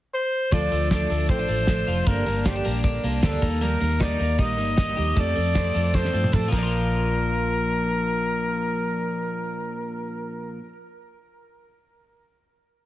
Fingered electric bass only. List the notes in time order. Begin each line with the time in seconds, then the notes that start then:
0.52 D2
0.72 D2
1.10 D2
1.29 A1
1.49 A1
1.88 F1
2.07 G1
2.26 G1
2.66 A#1
3.04 C2
3.23 D2
3.43 D#2
3.81 D#2
4.20 D#2
4.39 A#1
4.59 G1
4.98 D#2
5.17 F2
5.37 F2
5.75 F2
6.14 G2
6.34 A2
6.53 A#1